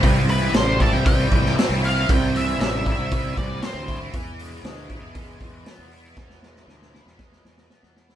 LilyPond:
<<
  \new Staff \with { instrumentName = "Lead electric guitar" } { \time 4/4 \key c \major \tempo 4 = 117 r8 b'8 c''8 a''16 g''16 g''4 r8 f''8 | g''8 e''8 e''8 e''4 d''8 c''8. r16 | r1 | r1 | }
  \new Staff \with { instrumentName = "Tonewheel organ" } { \time 4/4 \key c \major e'1~ | e'1~ | e'1~ | e'1 | }
  \new Staff \with { instrumentName = "Tonewheel organ" } { \time 4/4 \key c \major <g c' c''>1~ | <g c' c''>1 | <gis b b'>1~ | <gis b b'>1 | }
  \new Staff \with { instrumentName = "Overdriven electric guitar" } { \clef bass \time 4/4 \key c \major c8 e8 g8 e'8 g8 e8 c'8 e'8 | c8 e8 g8 e'8 g8 e8 c'8 e'8 | e8 gis8 gis8 e'8 gis8 e8 b8 e'8 | e8 gis8 gis8 e'8 gis8 e8 b8 e'8 | }
  \new Staff \with { instrumentName = "Fingered electric bass" } { \clef bass \time 4/4 \key c \major c,4 a,,8. c,8. c,8 r16 c,8. | c,4 a,,8. c,8. c,8 r16 d,8. | e,4 d,8. e,8. e,8 r16 e,8. | e,4 d,8. e,8. e,8 r16 e,8. | }
  \new DrumStaff \with { instrumentName = "Drums" } \drummode { \time 4/4 <hho bd>8 hho8 <hho sn>8 <hho bd>8 <hho bd>8 <hho bd>16 sn16 <hho sn>8 hho8 | <hho bd>8 hho8 <hho sn>8 <hho bd>8 <hho bd>8 <hho bd>8 <hho sn>8 <hho bd>8 | <hho bd>8 hho8 <hho sn>8 <hho bd>8 <hho bd>8 <hho bd>8 <hho sn>8 hho8 | <bd sn>16 sn16 sn16 sn16 sn16 sn16 sn16 sn16 <bd sn>16 sn16 sn16 sn16 sn16 sn16 sn16 sn16 | }
>>